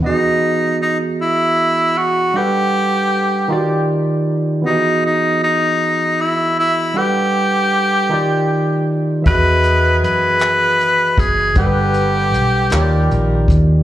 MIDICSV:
0, 0, Header, 1, 6, 480
1, 0, Start_track
1, 0, Tempo, 769231
1, 19, Time_signature, 6, 3, 24, 8
1, 8630, End_track
2, 0, Start_track
2, 0, Title_t, "Tine electric piano"
2, 0, Program_c, 0, 4
2, 0, Control_c, 0, 64, 127
2, 0, Note_on_c, 0, 52, 65
2, 14, Note_on_c, 0, 59, 62
2, 27, Note_on_c, 0, 75, 61
2, 28, Control_c, 0, 64, 0
2, 42, Note_on_c, 0, 66, 64
2, 56, Note_on_c, 0, 68, 73
2, 121, Control_c, 0, 64, 127
2, 1425, Note_off_c, 0, 52, 0
2, 1432, Note_off_c, 0, 59, 0
2, 1438, Note_off_c, 0, 75, 0
2, 1446, Note_off_c, 0, 66, 0
2, 1453, Note_off_c, 0, 68, 0
2, 1459, Note_on_c, 0, 55, 71
2, 1466, Control_c, 0, 64, 0
2, 1466, Note_on_c, 0, 62, 62
2, 1471, Note_on_c, 0, 78, 65
2, 1479, Note_on_c, 0, 69, 64
2, 1485, Note_on_c, 0, 71, 74
2, 1589, Control_c, 0, 64, 127
2, 2172, Note_on_c, 0, 51, 88
2, 2178, Note_on_c, 0, 63, 80
2, 2179, Note_off_c, 0, 55, 0
2, 2183, Note_off_c, 0, 62, 0
2, 2185, Note_off_c, 0, 78, 0
2, 2185, Note_on_c, 0, 65, 84
2, 2188, Control_c, 0, 64, 0
2, 2189, Note_off_c, 0, 69, 0
2, 2192, Note_off_c, 0, 71, 0
2, 2194, Note_on_c, 0, 66, 64
2, 2198, Note_on_c, 0, 74, 98
2, 2227, Note_off_c, 0, 66, 0
2, 2233, Note_on_c, 0, 67, 84
2, 2301, Control_c, 0, 64, 127
2, 2881, Note_on_c, 0, 52, 74
2, 2894, Note_on_c, 0, 59, 64
2, 2896, Note_off_c, 0, 51, 0
2, 2899, Note_off_c, 0, 63, 0
2, 2902, Note_off_c, 0, 65, 0
2, 2907, Control_c, 0, 64, 0
2, 2908, Note_on_c, 0, 66, 65
2, 2909, Note_off_c, 0, 74, 0
2, 2913, Note_off_c, 0, 67, 0
2, 2921, Note_on_c, 0, 67, 49
2, 2936, Note_on_c, 0, 75, 73
2, 2951, Note_off_c, 0, 67, 0
2, 2961, Note_on_c, 0, 68, 65
2, 3015, Control_c, 0, 64, 127
2, 4305, Note_off_c, 0, 52, 0
2, 4311, Note_off_c, 0, 59, 0
2, 4319, Note_off_c, 0, 66, 0
2, 4331, Note_on_c, 0, 55, 69
2, 4333, Note_off_c, 0, 75, 0
2, 4338, Note_on_c, 0, 62, 65
2, 4344, Note_on_c, 0, 78, 60
2, 4345, Note_off_c, 0, 68, 0
2, 4347, Control_c, 0, 64, 0
2, 4349, Note_on_c, 0, 69, 65
2, 4358, Note_on_c, 0, 71, 77
2, 4467, Control_c, 0, 64, 127
2, 5049, Note_on_c, 0, 51, 85
2, 5055, Note_off_c, 0, 55, 0
2, 5055, Note_on_c, 0, 63, 79
2, 5059, Note_off_c, 0, 62, 0
2, 5062, Note_off_c, 0, 78, 0
2, 5063, Note_on_c, 0, 65, 76
2, 5064, Note_off_c, 0, 69, 0
2, 5066, Control_c, 0, 64, 0
2, 5069, Note_off_c, 0, 71, 0
2, 5069, Note_on_c, 0, 67, 79
2, 5077, Note_on_c, 0, 74, 95
2, 5186, Control_c, 0, 64, 127
2, 5754, Note_on_c, 0, 52, 69
2, 5767, Note_on_c, 0, 76, 64
2, 5774, Note_off_c, 0, 51, 0
2, 5777, Note_off_c, 0, 63, 0
2, 5781, Note_off_c, 0, 65, 0
2, 5781, Note_on_c, 0, 66, 64
2, 5784, Note_off_c, 0, 67, 0
2, 5787, Control_c, 0, 64, 0
2, 5788, Note_off_c, 0, 74, 0
2, 5796, Note_on_c, 0, 68, 61
2, 5808, Note_on_c, 0, 75, 79
2, 5910, Control_c, 0, 64, 127
2, 7182, Note_off_c, 0, 52, 0
2, 7188, Note_off_c, 0, 76, 0
2, 7195, Note_off_c, 0, 66, 0
2, 7203, Note_off_c, 0, 68, 0
2, 7208, Note_off_c, 0, 75, 0
2, 7209, Note_on_c, 0, 55, 68
2, 7215, Note_on_c, 0, 62, 61
2, 7223, Note_on_c, 0, 78, 61
2, 7228, Control_c, 0, 64, 0
2, 7230, Note_on_c, 0, 69, 62
2, 7238, Note_on_c, 0, 70, 60
2, 7269, Note_off_c, 0, 70, 0
2, 7279, Note_on_c, 0, 71, 77
2, 7331, Control_c, 0, 64, 127
2, 7931, Note_on_c, 0, 51, 90
2, 7934, Note_off_c, 0, 55, 0
2, 7936, Note_on_c, 0, 63, 80
2, 7937, Note_off_c, 0, 62, 0
2, 7941, Note_off_c, 0, 78, 0
2, 7942, Note_on_c, 0, 65, 79
2, 7945, Note_off_c, 0, 69, 0
2, 7948, Control_c, 0, 64, 0
2, 7950, Note_on_c, 0, 67, 85
2, 7956, Note_on_c, 0, 73, 77
2, 7969, Note_off_c, 0, 71, 0
2, 7988, Note_off_c, 0, 73, 0
2, 7996, Note_on_c, 0, 74, 98
2, 8044, Control_c, 0, 64, 127
2, 8630, Note_off_c, 0, 51, 0
2, 8630, Note_off_c, 0, 63, 0
2, 8630, Note_off_c, 0, 65, 0
2, 8630, Note_off_c, 0, 67, 0
2, 8630, Note_off_c, 0, 74, 0
2, 8630, End_track
3, 0, Start_track
3, 0, Title_t, "Tenor saxophone"
3, 0, Program_c, 1, 66
3, 35, Note_on_c, 1, 63, 97
3, 482, Note_off_c, 1, 63, 0
3, 512, Note_on_c, 1, 63, 88
3, 612, Note_off_c, 1, 63, 0
3, 758, Note_on_c, 1, 64, 101
3, 1235, Note_on_c, 1, 66, 105
3, 1244, Note_off_c, 1, 64, 0
3, 1475, Note_on_c, 1, 67, 127
3, 1484, Note_off_c, 1, 66, 0
3, 2427, Note_off_c, 1, 67, 0
3, 2909, Note_on_c, 1, 63, 98
3, 3128, Note_off_c, 1, 63, 0
3, 3158, Note_on_c, 1, 63, 90
3, 3372, Note_off_c, 1, 63, 0
3, 3393, Note_on_c, 1, 63, 106
3, 3877, Note_on_c, 1, 64, 99
3, 3886, Note_off_c, 1, 63, 0
3, 4108, Note_off_c, 1, 64, 0
3, 4113, Note_on_c, 1, 64, 105
3, 4356, Note_on_c, 1, 67, 127
3, 4365, Note_off_c, 1, 64, 0
3, 5547, Note_off_c, 1, 67, 0
3, 5785, Note_on_c, 1, 71, 124
3, 6237, Note_off_c, 1, 71, 0
3, 6268, Note_on_c, 1, 71, 125
3, 6987, Note_on_c, 1, 68, 98
3, 6996, Note_off_c, 1, 71, 0
3, 7223, Note_off_c, 1, 68, 0
3, 7228, Note_on_c, 1, 67, 109
3, 8399, Note_off_c, 1, 67, 0
3, 8630, End_track
4, 0, Start_track
4, 0, Title_t, "Horn section"
4, 0, Program_c, 2, 61
4, 5778, Note_on_c, 2, 51, 76
4, 5778, Note_on_c, 2, 59, 72
4, 5779, Note_on_c, 2, 68, 77
4, 6955, Note_off_c, 2, 51, 0
4, 6955, Note_off_c, 2, 59, 0
4, 6955, Note_off_c, 2, 68, 0
4, 7217, Note_on_c, 2, 55, 73
4, 7217, Note_on_c, 2, 71, 81
4, 7218, Note_on_c, 2, 62, 71
4, 7689, Note_off_c, 2, 55, 0
4, 7689, Note_off_c, 2, 62, 0
4, 7689, Note_off_c, 2, 71, 0
4, 7936, Note_on_c, 2, 65, 70
4, 7937, Note_on_c, 2, 55, 66
4, 7937, Note_on_c, 2, 70, 80
4, 8408, Note_off_c, 2, 65, 0
4, 8408, Note_off_c, 2, 70, 0
4, 8409, Note_off_c, 2, 55, 0
4, 8630, End_track
5, 0, Start_track
5, 0, Title_t, "Fingered electric bass"
5, 0, Program_c, 3, 33
5, 5782, Note_on_c, 3, 40, 109
5, 6263, Note_off_c, 3, 40, 0
5, 6263, Note_on_c, 3, 42, 93
5, 6956, Note_off_c, 3, 42, 0
5, 6975, Note_on_c, 3, 30, 101
5, 7193, Note_off_c, 3, 30, 0
5, 7216, Note_on_c, 3, 31, 95
5, 7701, Note_off_c, 3, 31, 0
5, 7701, Note_on_c, 3, 35, 100
5, 7916, Note_off_c, 3, 35, 0
5, 7941, Note_on_c, 3, 39, 101
5, 8156, Note_off_c, 3, 39, 0
5, 8180, Note_on_c, 3, 34, 94
5, 8396, Note_off_c, 3, 34, 0
5, 8415, Note_on_c, 3, 39, 94
5, 8630, Note_off_c, 3, 39, 0
5, 8630, End_track
6, 0, Start_track
6, 0, Title_t, "Drums"
6, 5777, Note_on_c, 9, 42, 74
6, 5778, Note_on_c, 9, 36, 110
6, 5840, Note_off_c, 9, 36, 0
6, 5840, Note_off_c, 9, 42, 0
6, 6015, Note_on_c, 9, 42, 66
6, 6077, Note_off_c, 9, 42, 0
6, 6268, Note_on_c, 9, 42, 76
6, 6330, Note_off_c, 9, 42, 0
6, 6485, Note_on_c, 9, 42, 69
6, 6502, Note_on_c, 9, 39, 112
6, 6547, Note_off_c, 9, 42, 0
6, 6564, Note_off_c, 9, 39, 0
6, 6744, Note_on_c, 9, 42, 51
6, 6807, Note_off_c, 9, 42, 0
6, 6974, Note_on_c, 9, 36, 100
6, 6982, Note_on_c, 9, 42, 80
6, 7036, Note_off_c, 9, 36, 0
6, 7044, Note_off_c, 9, 42, 0
6, 7210, Note_on_c, 9, 42, 78
6, 7214, Note_on_c, 9, 36, 112
6, 7273, Note_off_c, 9, 42, 0
6, 7276, Note_off_c, 9, 36, 0
6, 7451, Note_on_c, 9, 42, 66
6, 7513, Note_off_c, 9, 42, 0
6, 7702, Note_on_c, 9, 42, 75
6, 7764, Note_off_c, 9, 42, 0
6, 7926, Note_on_c, 9, 42, 72
6, 7943, Note_on_c, 9, 39, 121
6, 7988, Note_off_c, 9, 42, 0
6, 8005, Note_off_c, 9, 39, 0
6, 8183, Note_on_c, 9, 42, 51
6, 8245, Note_off_c, 9, 42, 0
6, 8413, Note_on_c, 9, 36, 99
6, 8422, Note_on_c, 9, 42, 81
6, 8475, Note_off_c, 9, 36, 0
6, 8485, Note_off_c, 9, 42, 0
6, 8630, End_track
0, 0, End_of_file